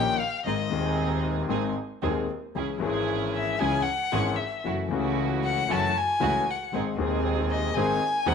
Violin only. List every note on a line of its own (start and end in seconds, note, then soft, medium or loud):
0.00 0.21 G5 loud
0.20 0.46 F5 medium
0.47 1.21 D#5 medium
3.36 3.61 E5 medium
3.59 3.84 G#5 loud
3.82 4.38 F#5 loud
4.36 4.64 E5 medium
5.44 5.73 F#5 medium
5.71 5.99 A5 loud
5.97 6.52 G#5 loud
6.51 6.75 F#5 medium
7.51 7.77 D#5 medium
7.75 8.29 G#5 loud
8.28 8.34 F#5 loud